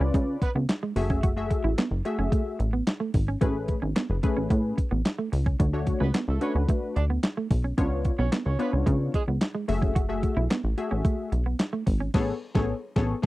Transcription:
Already playing: C#4 F4 B4 D5
0.00 C#2 C#4
0.14 C#3 G#3, kick, closed hi-hat
0.42 B3 B4, muted clean electric guitar stroke, kick, closed hi-hat
0.55 C#2 B3
0.69 snare, clap, closed hi-hat
0.83 G#3
0.96 F#1 A3 F#4 G#4 E5, muted clean electric guitar stroke, open hi-hat
1.10 C#4, kick
1.23 F#4, kick, closed hi-hat
1.36 A3 F#4 G#4 E5
1.50 muted clean electric guitar stroke, kick, closed hi-hat
1.64 A1 E4
1.78 B3, snare, clap, closed hi-hat
1.91 F#1
2.05 A3 F#4 G#4 E5, muted clean electric guitar stroke, closed hi-hat
2.19 F#1 C#4
2.32 A3, kick, closed hi-hat
2.59 A1, muted clean electric guitar stroke, closed hi-hat
2.73 B3
2.87 snare, clap, closed hi-hat
3.00 A3
3.14 G#1, muted clean electric guitar stroke, kick, open hi-hat
3.28 C#4
3.41 A1 A3 C#4 G#4 B4, kick, closed hi-hat
3.68 muted clean electric guitar stroke, kick, closed hi-hat
3.82 G#1 C#4
3.96 B3, snare, clap, closed hi-hat
4.10 F#1 G#4 B4
4.23 A3 C#4 G#4 B4, muted clean electric guitar stroke, kick, closed hi-hat
4.37 A1 C#4
4.50 A2 A3, kick, closed hi-hat
4.78 muted clean electric guitar stroke, kick, closed hi-hat
4.91 A1 B3
5.05 snare, clap, closed hi-hat
5.18 A3
5.32 C#2, muted clean electric guitar stroke, open hi-hat
5.46 C#4, kick
5.59 D2 D4 F#4 C#5, kick, closed hi-hat
5.73 A3 D4 F#4 C#5
5.87 muted clean electric guitar stroke, kick, closed hi-hat
6.00 C#2 B3 C#4 B4
6.14 B3, snare, clap, closed hi-hat
6.28 C#2 A3 A4
6.41 A3 C#4 D4 F#4 B4 C#5, muted clean electric guitar stroke, closed hi-hat
6.55 D2 C#4
6.69 A3, kick, closed hi-hat
6.96 D2 D4 D5, muted clean electric guitar stroke, closed hi-hat
7.10 B3
7.23 snare, clap, closed hi-hat
7.37 A3
7.51 B1, muted clean electric guitar stroke, kick, open hi-hat
7.64 C#4
7.78 C#2 B3 C#4 D4 F4 C#5, kick, closed hi-hat
8.05 muted clean electric guitar stroke, kick, closed hi-hat
8.19 B1 B3 C#4 C#5
8.32 B3, snare, clap, closed hi-hat
8.46 C#2 C#4 F4 C#5
8.59 B3 D4 F4 B4 C#5, muted clean electric guitar stroke, closed hi-hat
8.73 C#2 C#4
8.86 C#3 G#3, kick, closed hi-hat
9.14 G#3 G#4, muted clean electric guitar stroke, kick, closed hi-hat
9.28 C#2 B3
9.41 snare, clap, closed hi-hat
9.55 G#3
9.68 F#1 A3 F#4 G#4 E5, muted clean electric guitar stroke, open hi-hat
9.82 C#4, kick
9.95 F#4, kick, closed hi-hat
10.09 A3 F#4 G#4 E5
10.23 muted clean electric guitar stroke, kick, closed hi-hat
10.37 B1 E4
10.50 B3, snare, clap, closed hi-hat
10.64 A1
10.78 A3 F#4 G#4 E5, muted clean electric guitar stroke, closed hi-hat
10.91 A1 C#4
11.05 A3, kick, closed hi-hat
11.32 B1, muted clean electric guitar stroke, closed hi-hat
11.46 B3
11.59 snare, clap, closed hi-hat
11.73 A3
11.86 G#1, muted clean electric guitar stroke, kick, open hi-hat
12.00 C#4
12.14 A1 B3 G#4 A4 C#5, kick, snare, crash
12.55 A1 B3 G#4 A4 C#5, kick, snare
12.96 A1 B3 G#4 A4 C#5, kick, snare
13.22 B3 G#4 A4

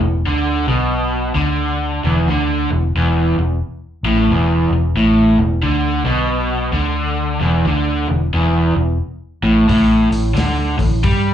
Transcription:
0.00 E1 E2
0.26 D2 D3
0.67 B1 B2
1.35 D2 D3
2.04 E1 E2
2.27 D2 D3
2.70 E1 E2
2.96 E1 E2
3.37 E1 E2
4.03 A1 A2
4.28 E1 E2
4.70 E1 E2
4.95 A1 A2
5.37 E1 E2
5.63 D2 D3
6.04 B1 B2
6.73 D2 D3
7.41 E1 E2
7.65 D2 D3
8.08 E1 E2
8.34 E1 E2
8.76 E1 E2
9.43 A1 A2
9.68 A1 A2, kick, open hi-hat
10.11 A1 A2, open hi-hat
10.34 D2 D3, snare, open hi-hat
10.78 A1 A2, kick, open hi-hat
11.03 G2 G3, kick, open hi-hat

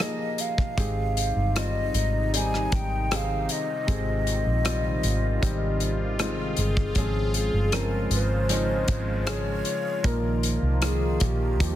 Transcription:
Already playing: G4 A#4
0.00 F3 A#3 D#4 G#4 D#5, cross-stick, closed hi-hat
0.38 F5, closed hi-hat
0.58 kick
0.77 G#1 C3 D#3 G#3 C4 D#4 G4 G#4, kick, closed hi-hat
1.17 closed hi-hat
1.36 G1
1.55 G3 C4 D#4 F4 D#5, cross-stick, closed hi-hat
1.94 G#1, closed hi-hat
2.33 G3 C4 D#4 G#5, closed hi-hat
2.54 cross-stick
2.72 G#1 G5, kick, closed hi-hat
3.11 C4 D#4 G4 G#4, cross-stick, closed hi-hat
3.16 F5
3.49 D#5, closed hi-hat
3.87 G#1 G#2 C4 D#4 F4 G4 G#4, kick, closed hi-hat
4.27 closed hi-hat
4.46 A#1
4.64 G3 C4 D#4 F4, cross-stick, closed hi-hat
5.03 G#1, closed hi-hat
5.41 G#1 G3 C4 D#4 G4, kick, closed hi-hat
5.80 closed hi-hat
6.19 G#3 C4 D#4 F4, cross-stick, closed hi-hat
6.57 G1 G#4, closed hi-hat
6.77 kick
6.95 G#1 C#3 F3 G#3 C4 C#4 G#4, kick, closed hi-hat
7.34 G#4, closed hi-hat
7.54 G1
7.72 F3 C4 C#4 A#4, cross-stick, closed hi-hat
8.11 G#1 C5, closed hi-hat
8.49 F3 C4 C#4 D#4, closed hi-hat
8.88 G#1, kick, closed hi-hat
9.26 F3 G#3 C#4 G#4 C#5, cross-stick, closed hi-hat
9.65 closed hi-hat
10.03 A#1 A#2 D#3 F3 A#3 D#4 A#4, kick, closed hi-hat
10.43 closed hi-hat
10.62 C2
10.81 F3 A#3 D#4 F4 G#4, cross-stick, closed hi-hat
11.20 A#1, kick, closed hi-hat
11.25 G4
11.60 D#2 F3 G3 A#3 D#4 F4 G4, kick, closed hi-hat

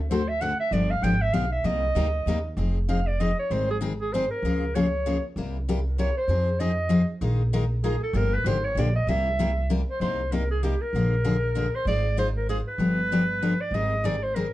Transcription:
Already playing: D2 A4
0.10 D3 A3 C4 F#4 A4 C5
0.28 E5
0.41 D3 A3 C4 F#4 A4 F#5
0.60 E5
0.71 G1 D3 F3 B3 D4 G4 D5
0.91 F5
1.02 G#1 D3 F3 B3 D4 G4 G5
1.22 E5
1.33 B1 D3 F3 B3 D4 G4 F5
1.52 E5
1.64 C2 C3 G3 A#3 D#4 G4 D#5
1.95 D2 C3 G3 A#3 D#4 G4
2.26 D#2 C3 G3 A#3 D#4 G4
2.57 F1 F3 C4 D#4 G#4
2.89 F3 C4 D#4 G#4 F5
3.07 D5
3.20 F3 C4 D#4 G#4 D#5
3.39 C#5
3.50 G#1 D#3 G3 C4 D#4 G#4 C5
3.71 G#4
3.81 D#3 G3 C4 D#4 G#4
4.01 G#4
4.13 D#3 G3 C4 D#4 G#4 C5
4.31 A#4
4.42 C#2 C#3 F3 A#3 F4 G#4
4.75 C#3 F3 A#3 F4 G#4 C#5
5.06 C#3 F3 A#3 F4 G#4
5.36 C2 C3 G3 A#3 E4 G4
5.69 C3 G3 A#3 E4 G4
5.87 A#4
5.98 C3 G3 A#3 E4 G4 C#5
6.17 C5
6.28 F2 F3 C4 D#4 G#4
6.60 F3 C4 D#4 G#4 D#5
6.89 F3 C4 D#4 G#4
7.21 A#1 D#3 G#3 D#4 F4 A#4
7.53 D#3 G#3 D#4 F4 A#4
7.84 D#3 G#3 D#4 F4 G#4 A#4
8.03 A4
8.13 G1 D3 F3 A#3 D4 G4 A#4
8.34 B4
8.44 G#1 D3 F3 A#3 D4 G4 C5
8.64 C#5
8.75 A#1 D3 F3 A#3 D4 G4 D5
8.96 D#5
9.07 C2 C3 G3 A#3 E4 G4 E5
9.39 C3 G3 A#3 E4 G4
9.70 C3 G3 A#3 E4 G4
9.90 C5
10.00 C2 C3 G3 A#3 D#4 G4 C5
10.32 C3 G3 A#3 D#4 G4 A#4
10.51 G#4
10.63 C3 G3 A#3 D#4 G4
10.81 A#4
10.93 A#1 D3 F3 A#3 D4 G#4
11.24 D3 F3 A#3 D4 G#4
11.55 D3 F3 A#3 D4 G#4
11.75 C5
11.85 G#1 G#3 D#4 F4 C5 D5
12.17 G#3 D#4 F4 C5
12.37 A#4
12.49 G#3 D#4 F4 G#4 C5
12.68 B4
12.78 G1 D3 F3 B3 D4 G4
13.12 D3 F3 B3 D4 G4
13.42 D3 F3 B3 D4 G4
13.61 D5
13.71 G#1 D#3 G3 C4 D#4 G#4 D#5
14.04 D#3 G3 C4 D#4 G#4 D5
14.23 C5
14.35 D#3 G3 C4 D#4 G#4 A#4

